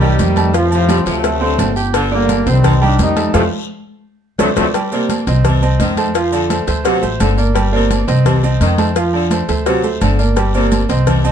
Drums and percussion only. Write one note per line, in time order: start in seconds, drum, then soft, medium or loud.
0.01 high conga soft
0.01 low conga medium
0.01 low agogo medium
0.19 cowbell medium
0.19 high conga medium
0.19 short guiro medium
0.19 maracas medium
0.36 cowbell medium
0.36 high conga medium
0.36 low agogo loud
0.36 short guiro medium
0.36 maracas soft
0.54 cowbell loud
0.54 high conga soft
0.54 long guiro medium
0.54 maracas medium
0.71 high conga soft
0.71 low agogo medium
0.71 maracas medium
0.89 cowbell medium
0.89 high conga loud
0.89 low agogo loud
0.89 short guiro medium
0.89 maracas medium
1.06 cowbell medium
1.06 high conga soft
1.06 short guiro medium
1.06 maracas soft
1.24 cowbell loud
1.24 high conga soft
1.24 low agogo medium
1.24 long guiro medium
1.24 maracas medium
1.41 high conga soft
1.58 cowbell medium
1.58 high conga medium
1.58 low timbale medium
1.58 low agogo loud
1.58 short guiro medium
1.58 maracas medium
1.76 short guiro medium
1.76 maracas soft
1.94 cowbell loud
1.94 high conga soft
1.94 low agogo loud
1.94 long guiro medium
1.94 maracas medium
2.11 high conga soft
2.29 cowbell medium
2.29 high conga loud
2.29 low agogo medium
2.29 short guiro medium
2.29 maracas medium
2.46 cowbell medium
2.46 high conga soft
2.46 short guiro medium
2.46 maracas soft
2.64 cowbell loud
2.64 high conga soft
2.64 low conga medium
2.64 low agogo loud
2.64 long guiro medium
2.64 maracas medium
2.81 low agogo medium
2.99 cowbell medium
2.99 high conga medium
2.99 low timbale medium
2.99 short guiro medium
2.99 maracas medium
3.16 cowbell medium
3.16 high conga medium
3.16 low agogo loud
3.16 short guiro medium
3.16 maracas soft
3.34 cowbell loud
3.34 high conga medium
3.34 high timbale loud
3.34 long guiro loud
3.34 maracas loud
4.39 cowbell loud
4.39 high conga loud
4.39 high timbale loud
4.39 long guiro loud
4.39 maracas loud
4.56 cowbell loud
4.56 high conga loud
4.56 high timbale loud
4.56 long guiro loud
4.56 maracas loud
4.74 cowbell loud
4.74 high conga soft
4.74 low agogo loud
4.74 long guiro medium
4.74 maracas medium
4.92 high conga soft
4.92 maracas medium
5.09 cowbell medium
5.09 high conga loud
5.09 low agogo medium
5.09 short guiro medium
5.09 maracas medium
5.27 cowbell medium
5.27 high conga soft
5.27 short guiro medium
5.27 maracas soft
5.44 cowbell loud
5.44 high conga soft
5.44 low conga medium
5.44 low agogo loud
5.44 long guiro medium
5.44 maracas medium
5.62 high conga soft
5.62 low agogo medium
5.62 maracas medium
5.80 cowbell medium
5.80 high conga medium
5.80 low timbale medium
5.80 short guiro medium
5.80 maracas medium
5.97 cowbell medium
5.97 high conga medium
5.97 low agogo loud
5.97 short guiro medium
5.97 maracas soft
6.15 cowbell loud
6.15 long guiro medium
6.15 maracas medium
6.32 high conga soft
6.32 low agogo medium
6.32 maracas medium
6.50 cowbell medium
6.50 high conga loud
6.50 low agogo loud
6.50 short guiro medium
6.50 maracas medium
6.68 cowbell medium
6.68 high conga soft
6.68 short guiro medium
6.68 maracas soft
6.85 cowbell loud
6.85 high conga soft
6.85 low agogo medium
6.85 long guiro medium
6.85 maracas medium
7.03 high conga soft
7.03 maracas medium
7.20 cowbell medium
7.20 high conga medium
7.20 low timbale medium
7.20 low agogo loud
7.20 short guiro medium
7.20 maracas medium
7.38 short guiro medium
7.38 maracas soft
7.55 cowbell loud
7.55 high conga soft
7.55 low agogo loud
7.55 long guiro medium
7.55 maracas medium
7.73 high conga soft
7.90 cowbell medium
7.90 high conga loud
7.90 low agogo medium
7.90 short guiro medium
7.90 maracas medium
8.08 cowbell medium
8.08 high conga soft
8.08 short guiro medium
8.08 maracas soft
8.25 cowbell loud
8.25 high conga soft
8.25 low conga medium
8.25 low agogo loud
8.25 long guiro medium
8.25 maracas medium
8.43 low agogo medium
8.43 maracas medium
8.60 cowbell medium
8.60 high conga medium
8.60 low timbale medium
8.60 short guiro medium
8.60 maracas medium
8.78 cowbell medium
8.78 high conga medium
8.78 low agogo loud
8.78 short guiro medium
8.78 maracas soft
8.96 cowbell loud
8.96 high conga soft
8.96 long guiro medium
8.96 maracas medium
9.13 high conga soft
9.13 low agogo medium
9.31 cowbell medium
9.31 high conga medium
9.31 low agogo loud
9.31 short guiro medium
9.31 maracas medium
9.48 cowbell medium
9.48 high conga soft
9.48 short guiro medium
9.48 maracas soft
9.66 cowbell loud
9.66 high conga soft
9.66 low agogo medium
9.66 long guiro medium
9.66 maracas medium
9.83 high conga soft
9.83 maracas medium
10.01 cowbell medium
10.01 high conga medium
10.01 low agogo loud
10.01 short guiro medium
10.01 maracas medium
10.19 short guiro medium
10.19 maracas soft
10.36 cowbell loud
10.36 high conga soft
10.36 low agogo loud
10.36 long guiro medium
10.36 maracas medium
10.54 high conga soft
10.54 maracas medium
10.72 cowbell medium
10.72 high conga medium
10.72 low agogo medium
10.72 short guiro medium
10.72 maracas medium
10.89 cowbell medium
10.89 high conga soft
10.89 short guiro medium
10.89 maracas soft
11.07 cowbell loud
11.07 high conga soft
11.07 low conga medium
11.07 low agogo loud
11.07 long guiro medium
11.07 maracas medium
11.24 high conga soft
11.24 low agogo medium
11.24 maracas medium